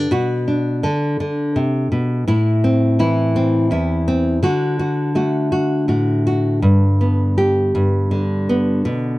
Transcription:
0, 0, Header, 1, 2, 480
1, 0, Start_track
1, 0, Key_signature, 1, "major"
1, 0, Tempo, 720288
1, 71, Time_signature, 6, 3, 24, 8
1, 3430, Tempo, 740741
1, 6047, End_track
2, 0, Start_track
2, 0, Title_t, "Nylon-string guitar"
2, 0, Program_c, 0, 24
2, 0, Note_on_c, 0, 62, 41
2, 72, Note_off_c, 0, 62, 0
2, 73, Note_on_c, 0, 47, 67
2, 78, Note_on_c, 0, 66, 58
2, 318, Note_on_c, 0, 62, 45
2, 555, Note_off_c, 0, 66, 0
2, 555, Note_on_c, 0, 50, 53
2, 558, Note_on_c, 0, 69, 48
2, 559, Note_off_c, 0, 47, 0
2, 793, Note_off_c, 0, 50, 0
2, 801, Note_on_c, 0, 50, 54
2, 1039, Note_on_c, 0, 48, 55
2, 1040, Note_off_c, 0, 50, 0
2, 1275, Note_off_c, 0, 48, 0
2, 1278, Note_on_c, 0, 47, 51
2, 1490, Note_off_c, 0, 62, 0
2, 1514, Note_off_c, 0, 47, 0
2, 1516, Note_on_c, 0, 45, 64
2, 1518, Note_off_c, 0, 69, 0
2, 1521, Note_on_c, 0, 64, 61
2, 1760, Note_on_c, 0, 60, 51
2, 1989, Note_off_c, 0, 64, 0
2, 1994, Note_on_c, 0, 52, 54
2, 1997, Note_on_c, 0, 64, 55
2, 2230, Note_off_c, 0, 60, 0
2, 2238, Note_on_c, 0, 60, 54
2, 2469, Note_off_c, 0, 45, 0
2, 2469, Note_off_c, 0, 64, 0
2, 2471, Note_on_c, 0, 40, 55
2, 2477, Note_on_c, 0, 64, 55
2, 2709, Note_off_c, 0, 60, 0
2, 2717, Note_on_c, 0, 60, 51
2, 2917, Note_off_c, 0, 52, 0
2, 2921, Note_off_c, 0, 60, 0
2, 2946, Note_off_c, 0, 40, 0
2, 2949, Note_off_c, 0, 64, 0
2, 2949, Note_on_c, 0, 50, 65
2, 2955, Note_on_c, 0, 66, 56
2, 3186, Note_off_c, 0, 66, 0
2, 3194, Note_on_c, 0, 66, 50
2, 3429, Note_off_c, 0, 66, 0
2, 3433, Note_on_c, 0, 57, 51
2, 3437, Note_on_c, 0, 66, 44
2, 3663, Note_off_c, 0, 66, 0
2, 3671, Note_on_c, 0, 66, 49
2, 3902, Note_off_c, 0, 66, 0
2, 3905, Note_on_c, 0, 45, 50
2, 3909, Note_on_c, 0, 66, 46
2, 4148, Note_off_c, 0, 66, 0
2, 4156, Note_on_c, 0, 66, 44
2, 4366, Note_off_c, 0, 57, 0
2, 4366, Note_off_c, 0, 66, 0
2, 4387, Note_on_c, 0, 43, 64
2, 4391, Note_off_c, 0, 45, 0
2, 4636, Note_on_c, 0, 59, 52
2, 4875, Note_on_c, 0, 67, 53
2, 5107, Note_off_c, 0, 43, 0
2, 5115, Note_on_c, 0, 43, 61
2, 5343, Note_off_c, 0, 50, 0
2, 5350, Note_on_c, 0, 50, 54
2, 5590, Note_off_c, 0, 59, 0
2, 5598, Note_on_c, 0, 59, 53
2, 5801, Note_off_c, 0, 43, 0
2, 5802, Note_off_c, 0, 67, 0
2, 5804, Note_off_c, 0, 59, 0
2, 5830, Note_on_c, 0, 47, 70
2, 6047, Note_off_c, 0, 47, 0
2, 6047, Note_off_c, 0, 50, 0
2, 6047, End_track
0, 0, End_of_file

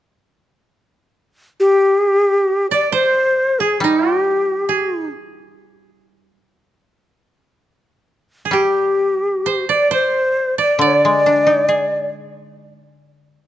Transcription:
0, 0, Header, 1, 4, 480
1, 0, Start_track
1, 0, Tempo, 886263
1, 149, Time_signature, 2, 2, 24, 8
1, 2542, Tempo, 835655
1, 3982, Tempo, 874636
1, 4462, Tempo, 913242
1, 5902, Tempo, 851064
1, 7401, End_track
2, 0, Start_track
2, 0, Title_t, "Koto"
2, 0, Program_c, 0, 107
2, 1469, Note_on_c, 0, 74, 53
2, 1584, Note_on_c, 0, 72, 55
2, 1951, Note_on_c, 0, 68, 49
2, 2079, Note_on_c, 0, 63, 49
2, 2112, Note_off_c, 0, 68, 0
2, 2226, Note_off_c, 0, 63, 0
2, 2226, Note_on_c, 0, 67, 49
2, 2336, Note_off_c, 0, 74, 0
2, 2513, Note_off_c, 0, 72, 0
2, 2539, Note_on_c, 0, 68, 49
2, 2573, Note_off_c, 0, 67, 0
2, 3670, Note_off_c, 0, 68, 0
2, 4660, Note_on_c, 0, 68, 36
2, 4702, Note_on_c, 0, 67, 49
2, 4733, Note_off_c, 0, 68, 0
2, 5190, Note_on_c, 0, 72, 54
2, 5311, Note_on_c, 0, 74, 60
2, 5424, Note_off_c, 0, 72, 0
2, 5426, Note_on_c, 0, 72, 56
2, 5774, Note_off_c, 0, 67, 0
2, 5778, Note_off_c, 0, 74, 0
2, 5780, Note_on_c, 0, 74, 53
2, 5899, Note_off_c, 0, 74, 0
2, 5901, Note_on_c, 0, 74, 56
2, 6359, Note_off_c, 0, 72, 0
2, 6804, Note_off_c, 0, 74, 0
2, 7401, End_track
3, 0, Start_track
3, 0, Title_t, "Shakuhachi"
3, 0, Program_c, 1, 77
3, 866, Note_on_c, 1, 67, 75
3, 1446, Note_off_c, 1, 67, 0
3, 1470, Note_on_c, 1, 74, 64
3, 1581, Note_off_c, 1, 74, 0
3, 1591, Note_on_c, 1, 72, 69
3, 1946, Note_on_c, 1, 68, 61
3, 1954, Note_off_c, 1, 72, 0
3, 2064, Note_off_c, 1, 68, 0
3, 2067, Note_on_c, 1, 63, 69
3, 2289, Note_off_c, 1, 63, 0
3, 2289, Note_on_c, 1, 67, 69
3, 2760, Note_off_c, 1, 67, 0
3, 4703, Note_on_c, 1, 67, 59
3, 5291, Note_off_c, 1, 67, 0
3, 5327, Note_on_c, 1, 74, 65
3, 5429, Note_off_c, 1, 74, 0
3, 5434, Note_on_c, 1, 72, 65
3, 5764, Note_off_c, 1, 72, 0
3, 5797, Note_on_c, 1, 74, 61
3, 5901, Note_off_c, 1, 74, 0
3, 5923, Note_on_c, 1, 74, 72
3, 6614, Note_off_c, 1, 74, 0
3, 7401, End_track
4, 0, Start_track
4, 0, Title_t, "Koto"
4, 0, Program_c, 2, 107
4, 2060, Note_on_c, 2, 55, 48
4, 3499, Note_off_c, 2, 55, 0
4, 4690, Note_on_c, 2, 55, 39
4, 5887, Note_on_c, 2, 50, 46
4, 6034, Note_on_c, 2, 56, 35
4, 6145, Note_off_c, 2, 55, 0
4, 6154, Note_on_c, 2, 62, 34
4, 6269, Note_on_c, 2, 63, 36
4, 6393, Note_on_c, 2, 68, 32
4, 6987, Note_off_c, 2, 56, 0
4, 7105, Note_off_c, 2, 62, 0
4, 7221, Note_off_c, 2, 63, 0
4, 7335, Note_off_c, 2, 50, 0
4, 7344, Note_off_c, 2, 68, 0
4, 7401, End_track
0, 0, End_of_file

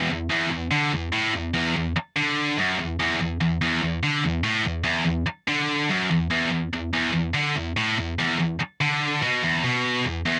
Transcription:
0, 0, Header, 1, 3, 480
1, 0, Start_track
1, 0, Tempo, 414079
1, 118, Time_signature, 4, 2, 24, 8
1, 12051, End_track
2, 0, Start_track
2, 0, Title_t, "Distorted electric guitar"
2, 0, Program_c, 0, 30
2, 112, Note_on_c, 0, 40, 66
2, 307, Note_off_c, 0, 40, 0
2, 342, Note_on_c, 0, 40, 101
2, 569, Note_off_c, 0, 40, 0
2, 583, Note_on_c, 0, 40, 69
2, 782, Note_off_c, 0, 40, 0
2, 824, Note_on_c, 0, 50, 98
2, 1063, Note_off_c, 0, 50, 0
2, 1066, Note_on_c, 0, 40, 71
2, 1264, Note_off_c, 0, 40, 0
2, 1306, Note_on_c, 0, 45, 97
2, 1544, Note_off_c, 0, 45, 0
2, 1551, Note_on_c, 0, 40, 69
2, 1746, Note_off_c, 0, 40, 0
2, 1782, Note_on_c, 0, 40, 101
2, 2022, Note_off_c, 0, 40, 0
2, 2037, Note_on_c, 0, 40, 69
2, 2229, Note_off_c, 0, 40, 0
2, 2511, Note_on_c, 0, 50, 100
2, 2985, Note_on_c, 0, 42, 108
2, 2987, Note_off_c, 0, 50, 0
2, 3224, Note_off_c, 0, 42, 0
2, 3231, Note_on_c, 0, 40, 68
2, 3426, Note_off_c, 0, 40, 0
2, 3470, Note_on_c, 0, 40, 103
2, 3699, Note_off_c, 0, 40, 0
2, 3713, Note_on_c, 0, 40, 72
2, 3907, Note_off_c, 0, 40, 0
2, 3948, Note_on_c, 0, 40, 69
2, 4145, Note_off_c, 0, 40, 0
2, 4190, Note_on_c, 0, 40, 97
2, 4419, Note_off_c, 0, 40, 0
2, 4433, Note_on_c, 0, 40, 70
2, 4627, Note_off_c, 0, 40, 0
2, 4677, Note_on_c, 0, 50, 94
2, 4910, Note_off_c, 0, 50, 0
2, 4912, Note_on_c, 0, 40, 70
2, 5106, Note_off_c, 0, 40, 0
2, 5145, Note_on_c, 0, 45, 94
2, 5374, Note_on_c, 0, 40, 69
2, 5384, Note_off_c, 0, 45, 0
2, 5577, Note_off_c, 0, 40, 0
2, 5606, Note_on_c, 0, 40, 101
2, 5843, Note_off_c, 0, 40, 0
2, 5857, Note_on_c, 0, 40, 68
2, 6059, Note_off_c, 0, 40, 0
2, 6353, Note_on_c, 0, 50, 90
2, 6828, Note_off_c, 0, 50, 0
2, 6836, Note_on_c, 0, 42, 99
2, 7070, Note_off_c, 0, 42, 0
2, 7076, Note_on_c, 0, 40, 69
2, 7269, Note_off_c, 0, 40, 0
2, 7306, Note_on_c, 0, 40, 98
2, 7536, Note_off_c, 0, 40, 0
2, 7550, Note_on_c, 0, 40, 69
2, 7746, Note_off_c, 0, 40, 0
2, 7801, Note_on_c, 0, 40, 67
2, 7992, Note_off_c, 0, 40, 0
2, 8039, Note_on_c, 0, 40, 98
2, 8253, Note_off_c, 0, 40, 0
2, 8267, Note_on_c, 0, 40, 70
2, 8465, Note_off_c, 0, 40, 0
2, 8515, Note_on_c, 0, 50, 94
2, 8749, Note_off_c, 0, 50, 0
2, 8764, Note_on_c, 0, 40, 72
2, 8953, Note_off_c, 0, 40, 0
2, 9005, Note_on_c, 0, 45, 98
2, 9234, Note_off_c, 0, 45, 0
2, 9252, Note_on_c, 0, 40, 73
2, 9437, Note_off_c, 0, 40, 0
2, 9494, Note_on_c, 0, 40, 98
2, 9716, Note_off_c, 0, 40, 0
2, 9730, Note_on_c, 0, 40, 67
2, 9916, Note_off_c, 0, 40, 0
2, 10216, Note_on_c, 0, 50, 98
2, 10680, Note_off_c, 0, 50, 0
2, 10691, Note_on_c, 0, 47, 106
2, 10917, Note_off_c, 0, 47, 0
2, 10930, Note_on_c, 0, 40, 101
2, 11156, Note_off_c, 0, 40, 0
2, 11170, Note_on_c, 0, 47, 100
2, 11637, Note_off_c, 0, 47, 0
2, 11653, Note_on_c, 0, 40, 71
2, 11837, Note_off_c, 0, 40, 0
2, 11891, Note_on_c, 0, 40, 99
2, 12051, Note_off_c, 0, 40, 0
2, 12051, End_track
3, 0, Start_track
3, 0, Title_t, "Muted distorted electric guitar strokes"
3, 2274, Note_on_c, 9, 29, 55
3, 2390, Note_off_c, 9, 29, 0
3, 6100, Note_on_c, 9, 29, 54
3, 6216, Note_off_c, 9, 29, 0
3, 9975, Note_on_c, 9, 29, 54
3, 10091, Note_off_c, 9, 29, 0
3, 12051, End_track
0, 0, End_of_file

